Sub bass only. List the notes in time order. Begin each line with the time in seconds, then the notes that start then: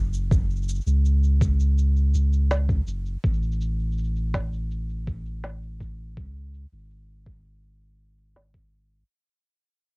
Already playing: F#1
0.86 C#2
2.15 C#2
2.87 F#1
3.24 A1
6.17 C#2
6.72 G#1
8.36 G#1